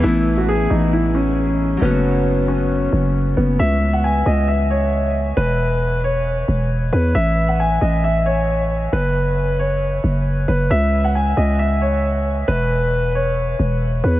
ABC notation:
X:1
M:4/4
L:1/16
Q:1/4=135
K:C#m
V:1 name="Grand piano"
E3 F G2 D2 E2 C6 | B,6 C8 B,2 | e3 f g2 d2 e2 c6 | B6 c8 B2 |
e3 f g2 d2 e2 c6 | B6 c8 B2 | e3 f g2 d2 e2 c6 | B6 c8 B2 |]
V:2 name="Harp"
[E,A,B,E]16 | [F,A,CF]16 | z16 | z16 |
z16 | z16 | z16 | z16 |]
V:3 name="808-style bass" clef=bass
A,,,6 A,,,8- A,,,2 | F,,,8- F,,,2 F,,,4 F,,,2 | C,,6 C,,8- C,,2 | E,,,8- E,,,2 E,,,4 E,,2 |
A,,,6 A,,,8- A,,,2 | F,,,8- F,,,2 F,,,4 F,,,2 | C,,6 C,,8- C,,2 | E,,,8- E,,,2 E,,,4 E,,2 |]